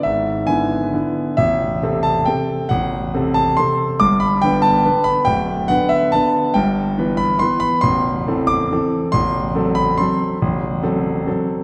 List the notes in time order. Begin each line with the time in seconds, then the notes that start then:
0.03 G#1 G#2 E5
0.47 D3 B3 E4 G#5
0.93 D3 B3 E4
1.37 A0 A1 E5
1.82 C3 C4 A4
2.03 A5
2.26 C3 C4 A4 G5
2.69 A0 A1 F#5
3.14 C3 C4 A4
3.34 A5
3.57 C3 C4 A4 C6
4.00 G1 G2 D6
4.20 B5
4.42 D3 B3 B4 G5
4.62 A5
4.85 D3 B3 B4
5.04 B5
5.25 D1 D2 G5
5.68 D3 B3 B4 F#5
5.89 E5
6.12 D3 B3 B4 A5
6.54 G1 G2 G5
6.98 E3 B3 B4
7.17 B5
7.39 E3 B3 B4 C6
7.60 B5
7.81 A0 A1 C6
8.27 E3 C4 A4
8.47 D6
8.72 E3 C4 A4
9.12 A0 A1 C6
9.55 F#3 C4 A4
9.75 B5
9.98 F#3 C4 A4 C6
10.41 A0 A1
10.83 F#3 C4 A4
11.27 F#3 C4 A4